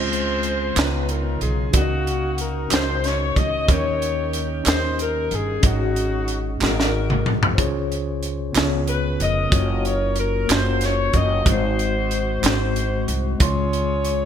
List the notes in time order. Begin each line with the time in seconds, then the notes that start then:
Already playing: C#2 C#3 G#3 C4 C#4 F4 G#4 C5
0.13 closed hi-hat
0.43 closed hi-hat
0.74 C#2 C#3 B3 D#4 E4 F4 B4 C#5 A#5, clap, closed hi-hat
0.79 F4, snare
1.09 A#4, closed hi-hat
1.41 B1 G#4, closed hi-hat
1.71 C#2 C#3 C#4 D#4 F#4 A#4 D5, kick, closed hi-hat
1.76 A#3 D#4 F#4
1.81 D#5
2.07 closed hi-hat
2.38 A#4, closed hi-hat
2.69 C#2 C#4 D#4 F#4 A#4, clap, closed hi-hat
2.73 C5 D#5, snare
3.04 C#5, snare, closed hi-hat
3.36 C#2 D#5, kick, closed hi-hat
3.66 D#2 D#3 C#4 D#4 G4 A#4 D#5, kick, closed hi-hat
3.71 G4 A#4 C#5
4.02 closed hi-hat
4.33 closed hi-hat
4.63 D#2 C#4 D#4 G4 A#4 D#5, clap, closed hi-hat
4.68 C5, snare
4.99 A#4, closed hi-hat
5.31 G1 G#4, closed hi-hat
5.61 G#1 G#2 C#4 D#4 F#4 G#4, kick, closed hi-hat
5.65 C#4 D#4 F#4 D#5
5.96 closed hi-hat
6.28 closed hi-hat
6.59 G#1 G#2 A#3 D#4 F#4 G#4, clap
6.63 C4 D#4 F#4 A#4 D#5, snare
6.80 snare
7.10 mid tom
7.26 C2, mid tom
7.43 floor tom
7.55 C#2 C#3 C#4 F4 G#4 C5, kick, closed hi-hat
7.60 C#5
7.92 closed hi-hat
8.23 closed hi-hat
8.53 C#2 C#3 B3 C#4 F4 G#4, clap, closed hi-hat
8.57 C5, snare
8.63 C#5
8.87 B4, closed hi-hat
9.20 F1 A#4 D#5, closed hi-hat
9.50 F#1 A#3 C#4 F4 F#4 C#5, kick, closed hi-hat
9.85 C#5, closed hi-hat
10.16 A#4, closed hi-hat
10.47 F#1 A#3 C#4 F4 F#4, clap, closed hi-hat
10.51 A#4 C5, snare
10.81 C#5, snare, closed hi-hat
11.13 F#1 D#5, kick, closed hi-hat
11.45 G#1 G#2 G#3 C4 D#4 F#4 C5, kick, closed hi-hat
11.49 C5
11.79 closed hi-hat
12.11 closed hi-hat
12.42 G#1 G#3 C4 D#4 F#4, clap, closed hi-hat
12.46 C5, snare
12.76 closed hi-hat
13.08 C2, closed hi-hat
13.39 C#2 C#3 G#3 C#4 F4 G#4 C#5 C6, kick, closed hi-hat
13.73 closed hi-hat
14.05 closed hi-hat